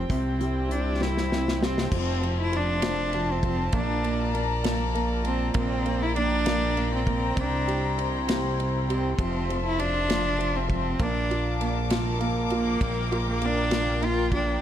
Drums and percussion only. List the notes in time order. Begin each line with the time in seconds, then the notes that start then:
0.10 kick, closed hi-hat
0.41 closed hi-hat
0.71 closed hi-hat
1.02 snare
1.17 snare
1.32 snare
1.48 snare
1.63 snare
1.78 snare
1.92 kick, crash
2.23 ride
2.53 ride
2.82 snare, ride
3.13 ride
3.43 kick, ride
3.73 kick, ride
4.04 ride
4.35 ride
4.64 snare, ride
4.95 ride
5.25 ride
5.54 kick, ride
5.86 ride
6.16 ride
6.46 snare, ride
6.77 ride
7.07 kick, ride
7.37 kick, ride
7.68 ride
7.99 ride
8.29 snare, ride
8.60 ride
8.90 ride
9.19 kick, ride
9.50 ride
9.79 ride
10.10 snare, ride
10.41 ride
10.70 kick, ride
11.00 kick, ride
11.31 ride
11.61 ride
11.90 snare, ride
12.21 ride
12.50 ride
12.81 kick, ride
13.12 ride
13.42 ride
13.71 snare, ride
14.02 ride
14.32 kick, ride